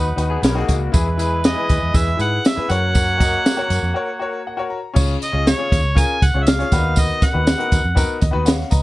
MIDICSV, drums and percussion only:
0, 0, Header, 1, 2, 480
1, 0, Start_track
1, 0, Tempo, 502513
1, 898, Time_signature, 4, 2, 24, 8
1, 8431, End_track
2, 0, Start_track
2, 0, Title_t, "Drums"
2, 173, Note_on_c, 9, 42, 77
2, 173, Note_on_c, 9, 54, 60
2, 268, Note_off_c, 9, 42, 0
2, 269, Note_off_c, 9, 54, 0
2, 413, Note_on_c, 9, 42, 82
2, 414, Note_on_c, 9, 54, 91
2, 426, Note_on_c, 9, 38, 112
2, 509, Note_off_c, 9, 42, 0
2, 510, Note_off_c, 9, 54, 0
2, 521, Note_off_c, 9, 38, 0
2, 546, Note_on_c, 9, 38, 32
2, 641, Note_off_c, 9, 38, 0
2, 655, Note_on_c, 9, 54, 62
2, 660, Note_on_c, 9, 36, 83
2, 663, Note_on_c, 9, 42, 64
2, 750, Note_off_c, 9, 54, 0
2, 755, Note_off_c, 9, 36, 0
2, 758, Note_off_c, 9, 42, 0
2, 895, Note_on_c, 9, 54, 97
2, 897, Note_on_c, 9, 42, 75
2, 899, Note_on_c, 9, 36, 101
2, 991, Note_off_c, 9, 54, 0
2, 993, Note_off_c, 9, 42, 0
2, 994, Note_off_c, 9, 36, 0
2, 1138, Note_on_c, 9, 54, 59
2, 1144, Note_on_c, 9, 42, 68
2, 1234, Note_off_c, 9, 54, 0
2, 1239, Note_off_c, 9, 42, 0
2, 1376, Note_on_c, 9, 54, 98
2, 1382, Note_on_c, 9, 42, 70
2, 1385, Note_on_c, 9, 38, 114
2, 1471, Note_off_c, 9, 54, 0
2, 1477, Note_off_c, 9, 42, 0
2, 1480, Note_off_c, 9, 38, 0
2, 1617, Note_on_c, 9, 54, 53
2, 1622, Note_on_c, 9, 36, 79
2, 1625, Note_on_c, 9, 42, 87
2, 1713, Note_off_c, 9, 54, 0
2, 1718, Note_off_c, 9, 36, 0
2, 1720, Note_off_c, 9, 42, 0
2, 1857, Note_on_c, 9, 36, 87
2, 1857, Note_on_c, 9, 54, 83
2, 1870, Note_on_c, 9, 42, 74
2, 1953, Note_off_c, 9, 36, 0
2, 1953, Note_off_c, 9, 54, 0
2, 1965, Note_off_c, 9, 42, 0
2, 2097, Note_on_c, 9, 54, 54
2, 2102, Note_on_c, 9, 42, 75
2, 2192, Note_off_c, 9, 54, 0
2, 2197, Note_off_c, 9, 42, 0
2, 2337, Note_on_c, 9, 42, 80
2, 2342, Note_on_c, 9, 54, 86
2, 2349, Note_on_c, 9, 38, 112
2, 2432, Note_off_c, 9, 42, 0
2, 2437, Note_off_c, 9, 54, 0
2, 2445, Note_off_c, 9, 38, 0
2, 2469, Note_on_c, 9, 38, 33
2, 2565, Note_off_c, 9, 38, 0
2, 2575, Note_on_c, 9, 54, 61
2, 2589, Note_on_c, 9, 42, 64
2, 2670, Note_off_c, 9, 54, 0
2, 2684, Note_off_c, 9, 42, 0
2, 2816, Note_on_c, 9, 54, 89
2, 2817, Note_on_c, 9, 42, 69
2, 2822, Note_on_c, 9, 36, 104
2, 2911, Note_off_c, 9, 54, 0
2, 2913, Note_off_c, 9, 42, 0
2, 2918, Note_off_c, 9, 36, 0
2, 3061, Note_on_c, 9, 36, 93
2, 3062, Note_on_c, 9, 42, 70
2, 3069, Note_on_c, 9, 54, 63
2, 3157, Note_off_c, 9, 36, 0
2, 3158, Note_off_c, 9, 42, 0
2, 3164, Note_off_c, 9, 54, 0
2, 3303, Note_on_c, 9, 42, 65
2, 3304, Note_on_c, 9, 54, 99
2, 3306, Note_on_c, 9, 38, 109
2, 3399, Note_off_c, 9, 42, 0
2, 3400, Note_off_c, 9, 54, 0
2, 3402, Note_off_c, 9, 38, 0
2, 3537, Note_on_c, 9, 42, 93
2, 3557, Note_on_c, 9, 54, 56
2, 3633, Note_off_c, 9, 42, 0
2, 3652, Note_off_c, 9, 54, 0
2, 4737, Note_on_c, 9, 49, 94
2, 4740, Note_on_c, 9, 54, 96
2, 4742, Note_on_c, 9, 36, 104
2, 4832, Note_off_c, 9, 49, 0
2, 4836, Note_off_c, 9, 54, 0
2, 4838, Note_off_c, 9, 36, 0
2, 4985, Note_on_c, 9, 42, 65
2, 4991, Note_on_c, 9, 54, 63
2, 5080, Note_off_c, 9, 42, 0
2, 5087, Note_off_c, 9, 54, 0
2, 5224, Note_on_c, 9, 42, 68
2, 5227, Note_on_c, 9, 38, 107
2, 5229, Note_on_c, 9, 54, 100
2, 5319, Note_off_c, 9, 42, 0
2, 5322, Note_off_c, 9, 38, 0
2, 5325, Note_off_c, 9, 54, 0
2, 5465, Note_on_c, 9, 36, 83
2, 5468, Note_on_c, 9, 42, 88
2, 5478, Note_on_c, 9, 54, 59
2, 5560, Note_off_c, 9, 36, 0
2, 5563, Note_off_c, 9, 42, 0
2, 5573, Note_off_c, 9, 54, 0
2, 5699, Note_on_c, 9, 36, 89
2, 5709, Note_on_c, 9, 54, 92
2, 5710, Note_on_c, 9, 42, 78
2, 5794, Note_off_c, 9, 36, 0
2, 5804, Note_off_c, 9, 54, 0
2, 5806, Note_off_c, 9, 42, 0
2, 5944, Note_on_c, 9, 36, 90
2, 5945, Note_on_c, 9, 42, 69
2, 5945, Note_on_c, 9, 54, 59
2, 6040, Note_off_c, 9, 36, 0
2, 6041, Note_off_c, 9, 42, 0
2, 6041, Note_off_c, 9, 54, 0
2, 6176, Note_on_c, 9, 42, 79
2, 6177, Note_on_c, 9, 54, 87
2, 6189, Note_on_c, 9, 38, 115
2, 6272, Note_off_c, 9, 42, 0
2, 6273, Note_off_c, 9, 54, 0
2, 6284, Note_off_c, 9, 38, 0
2, 6306, Note_on_c, 9, 38, 33
2, 6307, Note_on_c, 9, 42, 41
2, 6402, Note_off_c, 9, 38, 0
2, 6403, Note_off_c, 9, 42, 0
2, 6417, Note_on_c, 9, 54, 63
2, 6421, Note_on_c, 9, 36, 85
2, 6423, Note_on_c, 9, 42, 69
2, 6512, Note_off_c, 9, 54, 0
2, 6517, Note_off_c, 9, 36, 0
2, 6519, Note_off_c, 9, 42, 0
2, 6648, Note_on_c, 9, 54, 101
2, 6659, Note_on_c, 9, 42, 77
2, 6660, Note_on_c, 9, 36, 104
2, 6744, Note_off_c, 9, 54, 0
2, 6755, Note_off_c, 9, 36, 0
2, 6755, Note_off_c, 9, 42, 0
2, 6896, Note_on_c, 9, 54, 64
2, 6898, Note_on_c, 9, 36, 102
2, 6903, Note_on_c, 9, 42, 68
2, 6908, Note_on_c, 9, 38, 33
2, 6991, Note_off_c, 9, 54, 0
2, 6994, Note_off_c, 9, 36, 0
2, 6998, Note_off_c, 9, 42, 0
2, 7003, Note_off_c, 9, 38, 0
2, 7134, Note_on_c, 9, 54, 98
2, 7136, Note_on_c, 9, 42, 78
2, 7139, Note_on_c, 9, 38, 117
2, 7230, Note_off_c, 9, 54, 0
2, 7232, Note_off_c, 9, 42, 0
2, 7235, Note_off_c, 9, 38, 0
2, 7262, Note_on_c, 9, 42, 46
2, 7357, Note_off_c, 9, 42, 0
2, 7372, Note_on_c, 9, 42, 97
2, 7376, Note_on_c, 9, 36, 87
2, 7379, Note_on_c, 9, 54, 65
2, 7468, Note_off_c, 9, 42, 0
2, 7472, Note_off_c, 9, 36, 0
2, 7475, Note_off_c, 9, 54, 0
2, 7611, Note_on_c, 9, 36, 91
2, 7614, Note_on_c, 9, 54, 84
2, 7618, Note_on_c, 9, 42, 84
2, 7706, Note_off_c, 9, 36, 0
2, 7710, Note_off_c, 9, 54, 0
2, 7713, Note_off_c, 9, 42, 0
2, 7847, Note_on_c, 9, 54, 60
2, 7854, Note_on_c, 9, 42, 78
2, 7855, Note_on_c, 9, 36, 94
2, 7942, Note_off_c, 9, 54, 0
2, 7950, Note_off_c, 9, 36, 0
2, 7950, Note_off_c, 9, 42, 0
2, 8082, Note_on_c, 9, 54, 96
2, 8089, Note_on_c, 9, 42, 83
2, 8101, Note_on_c, 9, 38, 114
2, 8177, Note_off_c, 9, 54, 0
2, 8184, Note_off_c, 9, 42, 0
2, 8197, Note_off_c, 9, 38, 0
2, 8222, Note_on_c, 9, 38, 32
2, 8318, Note_off_c, 9, 38, 0
2, 8320, Note_on_c, 9, 54, 64
2, 8332, Note_on_c, 9, 36, 90
2, 8334, Note_on_c, 9, 42, 66
2, 8416, Note_off_c, 9, 54, 0
2, 8428, Note_off_c, 9, 36, 0
2, 8429, Note_off_c, 9, 42, 0
2, 8431, End_track
0, 0, End_of_file